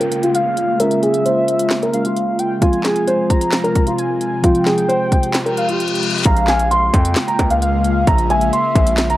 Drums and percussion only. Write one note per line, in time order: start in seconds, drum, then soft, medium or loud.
0.01 closed hi-hat soft
0.12 closed hi-hat medium
0.23 closed hi-hat medium
0.35 closed hi-hat medium
0.57 closed hi-hat medium
0.80 closed hi-hat medium
0.91 closed hi-hat medium
1.03 closed hi-hat medium
1.14 closed hi-hat medium
1.26 closed hi-hat medium
1.48 closed hi-hat medium
1.59 closed hi-hat medium
1.70 snare loud
1.70 clap medium
1.70 closed hi-hat medium
1.83 closed hi-hat medium
1.94 closed hi-hat medium
2.05 closed hi-hat medium
2.16 closed hi-hat medium
2.39 closed hi-hat medium
2.62 kick loud
2.62 closed hi-hat medium
2.73 closed hi-hat medium
2.84 snare medium
2.84 clap medium
2.84 closed hi-hat medium
2.96 closed hi-hat medium
3.08 closed hi-hat medium
3.30 kick loud
3.30 closed hi-hat medium
3.41 closed hi-hat medium
3.52 snare loud
3.52 clap loud
3.52 closed hi-hat medium
3.64 closed hi-hat soft
3.75 kick loud
3.75 closed hi-hat medium
3.87 closed hi-hat medium
3.98 closed hi-hat medium
4.21 closed hi-hat medium
4.44 kick loud
4.44 closed hi-hat medium
4.55 closed hi-hat medium
4.66 snare medium
4.66 clap medium
4.66 closed hi-hat medium
4.78 closed hi-hat medium
4.89 closed hi-hat medium
5.12 kick loud
5.12 closed hi-hat medium
5.23 closed hi-hat medium
5.34 snare loud
5.34 clap medium
5.34 closed hi-hat medium
5.46 closed hi-hat soft
5.57 closed hi-hat medium
5.69 closed hi-hat medium
5.80 closed hi-hat medium
5.88 closed hi-hat medium
5.95 closed hi-hat medium
6.03 closed hi-hat medium
6.10 closed hi-hat soft
6.18 closed hi-hat soft
6.25 kick loud
6.25 closed hi-hat loud
6.36 closed hi-hat medium
6.48 snare medium
6.48 clap medium
6.48 closed hi-hat medium
6.59 closed hi-hat medium
6.71 closed hi-hat medium
6.94 kick loud
6.94 closed hi-hat medium
7.05 closed hi-hat medium
7.16 snare loud
7.16 clap loud
7.16 closed hi-hat medium
7.28 closed hi-hat medium
7.39 kick loud
7.39 closed hi-hat medium
7.50 closed hi-hat medium
7.62 closed hi-hat medium
7.84 closed hi-hat medium
8.07 kick loud
8.07 closed hi-hat loud
8.18 closed hi-hat medium
8.30 closed hi-hat medium
8.41 closed hi-hat medium
8.53 closed hi-hat medium
8.75 kick loud
8.75 closed hi-hat medium
8.87 closed hi-hat medium
8.98 snare loud
8.98 clap loud
8.98 closed hi-hat medium
9.10 closed hi-hat medium